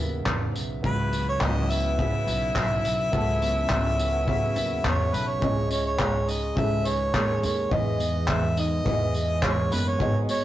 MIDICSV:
0, 0, Header, 1, 7, 480
1, 0, Start_track
1, 0, Tempo, 572519
1, 703, Time_signature, 4, 2, 24, 8
1, 8757, End_track
2, 0, Start_track
2, 0, Title_t, "Harmonica"
2, 0, Program_c, 0, 22
2, 722, Note_on_c, 0, 71, 97
2, 1048, Note_off_c, 0, 71, 0
2, 1080, Note_on_c, 0, 73, 93
2, 1205, Note_on_c, 0, 75, 96
2, 1218, Note_off_c, 0, 73, 0
2, 1430, Note_on_c, 0, 76, 100
2, 1443, Note_off_c, 0, 75, 0
2, 4068, Note_off_c, 0, 76, 0
2, 4079, Note_on_c, 0, 73, 83
2, 4309, Note_on_c, 0, 71, 77
2, 4322, Note_off_c, 0, 73, 0
2, 4424, Note_on_c, 0, 73, 89
2, 4437, Note_off_c, 0, 71, 0
2, 4784, Note_off_c, 0, 73, 0
2, 4791, Note_on_c, 0, 73, 83
2, 4900, Note_off_c, 0, 73, 0
2, 4914, Note_on_c, 0, 73, 84
2, 5278, Note_on_c, 0, 75, 88
2, 5290, Note_off_c, 0, 73, 0
2, 5515, Note_on_c, 0, 76, 99
2, 5528, Note_off_c, 0, 75, 0
2, 5760, Note_on_c, 0, 73, 88
2, 5773, Note_off_c, 0, 76, 0
2, 6232, Note_off_c, 0, 73, 0
2, 6247, Note_on_c, 0, 73, 84
2, 6489, Note_on_c, 0, 75, 101
2, 6502, Note_off_c, 0, 73, 0
2, 6962, Note_on_c, 0, 76, 90
2, 6975, Note_off_c, 0, 75, 0
2, 7192, Note_off_c, 0, 76, 0
2, 7206, Note_on_c, 0, 75, 104
2, 7920, Note_on_c, 0, 73, 87
2, 7933, Note_off_c, 0, 75, 0
2, 8165, Note_on_c, 0, 71, 88
2, 8177, Note_off_c, 0, 73, 0
2, 8281, Note_on_c, 0, 73, 88
2, 8294, Note_off_c, 0, 71, 0
2, 8533, Note_off_c, 0, 73, 0
2, 8638, Note_on_c, 0, 73, 97
2, 8741, Note_off_c, 0, 73, 0
2, 8757, End_track
3, 0, Start_track
3, 0, Title_t, "Upright piano"
3, 0, Program_c, 1, 0
3, 0, Control_c, 1, 64, 127
3, 0, Note_on_c, 1, 59, 79
3, 0, Note_on_c, 1, 66, 76
3, 0, Note_on_c, 1, 76, 92
3, 0, Note_on_c, 1, 77, 64
3, 0, Note_on_c, 1, 78, 76
3, 530, Note_off_c, 1, 59, 0
3, 532, Note_off_c, 1, 66, 0
3, 538, Note_off_c, 1, 76, 0
3, 693, Note_on_c, 1, 59, 68
3, 704, Note_on_c, 1, 66, 65
3, 708, Note_on_c, 1, 76, 81
3, 1492, Note_off_c, 1, 59, 0
3, 1497, Note_off_c, 1, 66, 0
3, 1499, Note_off_c, 1, 76, 0
3, 1661, Note_on_c, 1, 59, 69
3, 1669, Note_on_c, 1, 66, 64
3, 1678, Note_on_c, 1, 76, 74
3, 2456, Note_off_c, 1, 59, 0
3, 2460, Note_off_c, 1, 66, 0
3, 2464, Note_off_c, 1, 76, 0
3, 2617, Note_on_c, 1, 59, 85
3, 2624, Note_on_c, 1, 66, 79
3, 2631, Note_on_c, 1, 69, 96
3, 3337, Note_on_c, 1, 76, 70
3, 3414, Note_off_c, 1, 59, 0
3, 3417, Note_off_c, 1, 66, 0
3, 3420, Note_off_c, 1, 69, 0
3, 3452, Note_off_c, 1, 76, 0
3, 3462, Note_off_c, 1, 78, 0
3, 3462, Note_on_c, 1, 78, 72
3, 3570, Note_off_c, 1, 78, 0
3, 3573, Note_on_c, 1, 59, 84
3, 3579, Note_on_c, 1, 66, 78
3, 3582, Note_on_c, 1, 78, 76
3, 3588, Note_on_c, 1, 76, 93
3, 4030, Note_off_c, 1, 78, 0
3, 4058, Note_on_c, 1, 81, 70
3, 4284, Note_off_c, 1, 81, 0
3, 4303, Note_on_c, 1, 83, 76
3, 4371, Note_off_c, 1, 59, 0
3, 4374, Note_off_c, 1, 66, 0
3, 4379, Note_off_c, 1, 76, 0
3, 4527, Note_off_c, 1, 83, 0
3, 4535, Note_on_c, 1, 61, 78
3, 4541, Note_on_c, 1, 64, 63
3, 4547, Note_on_c, 1, 68, 65
3, 4552, Note_on_c, 1, 75, 79
3, 4556, Control_c, 1, 64, 0
3, 4558, Note_off_c, 1, 77, 0
3, 4701, Control_c, 1, 64, 127
3, 5332, Note_off_c, 1, 61, 0
3, 5335, Note_off_c, 1, 64, 0
3, 5338, Note_off_c, 1, 68, 0
3, 5341, Note_off_c, 1, 75, 0
3, 5492, Note_on_c, 1, 61, 69
3, 5499, Note_on_c, 1, 64, 68
3, 5502, Note_on_c, 1, 68, 67
3, 5510, Note_on_c, 1, 69, 62
3, 5561, Note_off_c, 1, 69, 0
3, 5561, Note_on_c, 1, 71, 79
3, 6290, Note_off_c, 1, 61, 0
3, 6293, Note_off_c, 1, 64, 0
3, 6295, Note_off_c, 1, 68, 0
3, 6324, Note_off_c, 1, 71, 0
3, 6451, Note_on_c, 1, 59, 71
3, 6459, Note_on_c, 1, 64, 69
3, 6464, Note_on_c, 1, 68, 63
3, 6470, Note_on_c, 1, 75, 87
3, 6474, Control_c, 1, 64, 0
3, 6641, Control_c, 1, 64, 127
3, 7249, Note_off_c, 1, 59, 0
3, 7253, Note_off_c, 1, 64, 0
3, 7255, Note_off_c, 1, 68, 0
3, 7258, Note_off_c, 1, 75, 0
3, 7419, Note_on_c, 1, 59, 68
3, 7426, Note_on_c, 1, 64, 69
3, 7433, Note_on_c, 1, 68, 68
3, 7434, Note_on_c, 1, 75, 65
3, 7477, Note_off_c, 1, 75, 0
3, 7490, Note_on_c, 1, 75, 82
3, 8212, Note_off_c, 1, 59, 0
3, 8215, Note_off_c, 1, 64, 0
3, 8219, Note_off_c, 1, 68, 0
3, 8247, Note_off_c, 1, 75, 0
3, 8374, Note_on_c, 1, 59, 78
3, 8381, Note_on_c, 1, 66, 70
3, 8389, Note_on_c, 1, 68, 74
3, 8392, Note_on_c, 1, 75, 83
3, 8393, Control_c, 1, 64, 0
3, 8532, Control_c, 1, 64, 127
3, 8757, Note_off_c, 1, 59, 0
3, 8757, Note_off_c, 1, 66, 0
3, 8757, Note_off_c, 1, 68, 0
3, 8757, Note_off_c, 1, 75, 0
3, 8757, End_track
4, 0, Start_track
4, 0, Title_t, "String section"
4, 0, Program_c, 2, 48
4, 704, Note_on_c, 2, 54, 69
4, 705, Note_on_c, 2, 59, 67
4, 705, Note_on_c, 2, 64, 85
4, 2607, Note_off_c, 2, 59, 0
4, 2633, Note_on_c, 2, 61, 69
4, 4512, Note_off_c, 2, 54, 0
4, 4512, Note_off_c, 2, 64, 0
4, 4530, Note_off_c, 2, 61, 0
4, 8757, End_track
5, 0, Start_track
5, 0, Title_t, "Steel-string acoustic guitar"
5, 0, Program_c, 3, 25
5, 0, Note_on_c, 3, 49, 84
5, 0, Note_on_c, 3, 54, 65
5, 0, Note_on_c, 3, 59, 54
5, 0, Note_on_c, 3, 64, 57
5, 0, Note_on_c, 3, 71, 61
5, 224, Note_off_c, 3, 54, 0
5, 234, Note_on_c, 3, 54, 68
5, 700, Note_off_c, 3, 49, 0
5, 710, Note_on_c, 3, 49, 78
5, 948, Note_off_c, 3, 59, 0
5, 957, Note_on_c, 3, 59, 59
5, 1184, Note_off_c, 3, 54, 0
5, 1194, Note_on_c, 3, 54, 68
5, 1422, Note_off_c, 3, 71, 0
5, 1432, Note_on_c, 3, 71, 62
5, 1656, Note_off_c, 3, 49, 0
5, 1666, Note_on_c, 3, 49, 80
5, 1901, Note_off_c, 3, 64, 0
5, 1904, Note_on_c, 3, 64, 58
5, 2135, Note_off_c, 3, 54, 0
5, 2145, Note_on_c, 3, 54, 72
5, 2607, Note_off_c, 3, 49, 0
5, 2617, Note_on_c, 3, 49, 71
5, 2852, Note_off_c, 3, 59, 0
5, 2862, Note_on_c, 3, 59, 59
5, 3094, Note_off_c, 3, 54, 0
5, 3105, Note_on_c, 3, 54, 67
5, 3331, Note_off_c, 3, 71, 0
5, 3341, Note_on_c, 3, 71, 67
5, 3575, Note_off_c, 3, 49, 0
5, 3586, Note_on_c, 3, 49, 85
5, 3823, Note_off_c, 3, 64, 0
5, 3826, Note_on_c, 3, 64, 59
5, 4052, Note_off_c, 3, 54, 0
5, 4062, Note_on_c, 3, 54, 69
5, 4527, Note_off_c, 3, 49, 0
5, 4537, Note_on_c, 3, 49, 83
5, 4542, Note_off_c, 3, 71, 0
5, 4546, Note_on_c, 3, 68, 68
5, 4591, Note_off_c, 3, 54, 0
5, 4591, Note_off_c, 3, 59, 0
5, 4786, Note_on_c, 3, 61, 61
5, 5018, Note_on_c, 3, 56, 68
5, 5255, Note_off_c, 3, 64, 0
5, 5259, Note_on_c, 3, 63, 60
5, 5493, Note_off_c, 3, 49, 0
5, 5503, Note_on_c, 3, 49, 84
5, 5742, Note_off_c, 3, 68, 0
5, 5745, Note_on_c, 3, 68, 63
5, 5983, Note_off_c, 3, 56, 0
5, 5987, Note_on_c, 3, 56, 76
5, 6213, Note_off_c, 3, 61, 0
5, 6223, Note_on_c, 3, 61, 61
5, 6468, Note_on_c, 3, 52, 79
5, 6469, Note_off_c, 3, 68, 0
5, 6472, Note_on_c, 3, 68, 64
5, 6511, Note_off_c, 3, 49, 0
5, 6511, Note_off_c, 3, 61, 0
5, 6704, Note_on_c, 3, 59, 58
5, 6942, Note_off_c, 3, 56, 0
5, 6945, Note_on_c, 3, 56, 68
5, 7185, Note_off_c, 3, 63, 0
5, 7188, Note_on_c, 3, 63, 58
5, 7422, Note_off_c, 3, 52, 0
5, 7432, Note_on_c, 3, 52, 91
5, 7662, Note_off_c, 3, 68, 0
5, 7666, Note_on_c, 3, 68, 62
5, 7901, Note_off_c, 3, 56, 0
5, 7905, Note_on_c, 3, 56, 73
5, 8146, Note_off_c, 3, 59, 0
5, 8150, Note_on_c, 3, 59, 65
5, 8381, Note_on_c, 3, 44, 80
5, 8386, Note_off_c, 3, 68, 0
5, 8390, Note_on_c, 3, 68, 57
5, 8430, Note_off_c, 3, 56, 0
5, 8432, Note_off_c, 3, 63, 0
5, 8434, Note_off_c, 3, 52, 0
5, 8626, Note_off_c, 3, 59, 0
5, 8629, Note_on_c, 3, 59, 64
5, 8757, Note_off_c, 3, 44, 0
5, 8757, Note_off_c, 3, 59, 0
5, 8757, Note_off_c, 3, 68, 0
5, 8757, End_track
6, 0, Start_track
6, 0, Title_t, "Upright bass"
6, 0, Program_c, 4, 32
6, 0, Note_on_c, 4, 39, 89
6, 202, Note_off_c, 4, 39, 0
6, 218, Note_on_c, 4, 40, 93
6, 467, Note_off_c, 4, 40, 0
6, 467, Note_on_c, 4, 35, 83
6, 686, Note_off_c, 4, 35, 0
6, 704, Note_on_c, 4, 37, 90
6, 1150, Note_off_c, 4, 37, 0
6, 1184, Note_on_c, 4, 37, 103
6, 1754, Note_off_c, 4, 37, 0
6, 1902, Note_on_c, 4, 35, 94
6, 2124, Note_off_c, 4, 35, 0
6, 2141, Note_on_c, 4, 35, 95
6, 2363, Note_off_c, 4, 35, 0
6, 2388, Note_on_c, 4, 35, 88
6, 2607, Note_off_c, 4, 35, 0
6, 2626, Note_on_c, 4, 37, 96
6, 3072, Note_off_c, 4, 37, 0
6, 3103, Note_on_c, 4, 37, 97
6, 3674, Note_off_c, 4, 37, 0
6, 3820, Note_on_c, 4, 39, 98
6, 4043, Note_off_c, 4, 39, 0
6, 4065, Note_on_c, 4, 40, 98
6, 4286, Note_off_c, 4, 40, 0
6, 4301, Note_on_c, 4, 35, 92
6, 4524, Note_off_c, 4, 35, 0
6, 4547, Note_on_c, 4, 37, 96
6, 5472, Note_off_c, 4, 37, 0
6, 5507, Note_on_c, 4, 37, 93
6, 5952, Note_off_c, 4, 37, 0
6, 5986, Note_on_c, 4, 39, 88
6, 6205, Note_off_c, 4, 39, 0
6, 6231, Note_on_c, 4, 39, 94
6, 6448, Note_off_c, 4, 39, 0
6, 6467, Note_on_c, 4, 40, 112
6, 7391, Note_off_c, 4, 40, 0
6, 7426, Note_on_c, 4, 40, 98
6, 8110, Note_off_c, 4, 40, 0
6, 8143, Note_on_c, 4, 30, 86
6, 8385, Note_off_c, 4, 30, 0
6, 8385, Note_on_c, 4, 32, 94
6, 8757, Note_off_c, 4, 32, 0
6, 8757, End_track
7, 0, Start_track
7, 0, Title_t, "Drums"
7, 219, Note_on_c, 9, 36, 107
7, 219, Note_on_c, 9, 39, 109
7, 302, Note_off_c, 9, 36, 0
7, 302, Note_off_c, 9, 39, 0
7, 465, Note_on_c, 9, 54, 65
7, 549, Note_off_c, 9, 54, 0
7, 705, Note_on_c, 9, 36, 109
7, 789, Note_off_c, 9, 36, 0
7, 946, Note_on_c, 9, 54, 59
7, 1029, Note_off_c, 9, 54, 0
7, 1181, Note_on_c, 9, 39, 98
7, 1184, Note_on_c, 9, 36, 110
7, 1265, Note_off_c, 9, 39, 0
7, 1268, Note_off_c, 9, 36, 0
7, 1428, Note_on_c, 9, 54, 73
7, 1512, Note_off_c, 9, 54, 0
7, 1667, Note_on_c, 9, 36, 106
7, 1751, Note_off_c, 9, 36, 0
7, 1909, Note_on_c, 9, 54, 60
7, 1993, Note_off_c, 9, 54, 0
7, 2143, Note_on_c, 9, 36, 112
7, 2145, Note_on_c, 9, 39, 107
7, 2227, Note_off_c, 9, 36, 0
7, 2229, Note_off_c, 9, 39, 0
7, 2388, Note_on_c, 9, 54, 67
7, 2472, Note_off_c, 9, 54, 0
7, 2625, Note_on_c, 9, 36, 109
7, 2709, Note_off_c, 9, 36, 0
7, 2867, Note_on_c, 9, 54, 59
7, 2951, Note_off_c, 9, 54, 0
7, 3099, Note_on_c, 9, 39, 101
7, 3104, Note_on_c, 9, 36, 107
7, 3183, Note_off_c, 9, 39, 0
7, 3187, Note_off_c, 9, 36, 0
7, 3348, Note_on_c, 9, 54, 75
7, 3432, Note_off_c, 9, 54, 0
7, 3585, Note_on_c, 9, 36, 110
7, 3669, Note_off_c, 9, 36, 0
7, 3824, Note_on_c, 9, 54, 62
7, 3908, Note_off_c, 9, 54, 0
7, 4063, Note_on_c, 9, 36, 106
7, 4066, Note_on_c, 9, 39, 119
7, 4146, Note_off_c, 9, 36, 0
7, 4150, Note_off_c, 9, 39, 0
7, 4309, Note_on_c, 9, 54, 64
7, 4393, Note_off_c, 9, 54, 0
7, 4546, Note_on_c, 9, 36, 112
7, 4630, Note_off_c, 9, 36, 0
7, 4784, Note_on_c, 9, 54, 62
7, 4868, Note_off_c, 9, 54, 0
7, 5024, Note_on_c, 9, 39, 107
7, 5025, Note_on_c, 9, 36, 112
7, 5108, Note_off_c, 9, 39, 0
7, 5109, Note_off_c, 9, 36, 0
7, 5269, Note_on_c, 9, 54, 70
7, 5353, Note_off_c, 9, 54, 0
7, 5507, Note_on_c, 9, 36, 115
7, 5591, Note_off_c, 9, 36, 0
7, 5747, Note_on_c, 9, 54, 64
7, 5831, Note_off_c, 9, 54, 0
7, 5986, Note_on_c, 9, 36, 112
7, 5992, Note_on_c, 9, 39, 113
7, 6070, Note_off_c, 9, 36, 0
7, 6075, Note_off_c, 9, 39, 0
7, 6232, Note_on_c, 9, 54, 69
7, 6316, Note_off_c, 9, 54, 0
7, 6468, Note_on_c, 9, 36, 116
7, 6552, Note_off_c, 9, 36, 0
7, 6708, Note_on_c, 9, 54, 60
7, 6792, Note_off_c, 9, 54, 0
7, 6941, Note_on_c, 9, 39, 112
7, 6946, Note_on_c, 9, 36, 116
7, 7024, Note_off_c, 9, 39, 0
7, 7030, Note_off_c, 9, 36, 0
7, 7187, Note_on_c, 9, 54, 75
7, 7271, Note_off_c, 9, 54, 0
7, 7427, Note_on_c, 9, 36, 117
7, 7511, Note_off_c, 9, 36, 0
7, 7665, Note_on_c, 9, 54, 58
7, 7749, Note_off_c, 9, 54, 0
7, 7902, Note_on_c, 9, 36, 107
7, 7905, Note_on_c, 9, 39, 113
7, 7986, Note_off_c, 9, 36, 0
7, 7989, Note_off_c, 9, 39, 0
7, 8148, Note_on_c, 9, 54, 71
7, 8232, Note_off_c, 9, 54, 0
7, 8385, Note_on_c, 9, 36, 116
7, 8469, Note_off_c, 9, 36, 0
7, 8626, Note_on_c, 9, 54, 62
7, 8710, Note_off_c, 9, 54, 0
7, 8757, End_track
0, 0, End_of_file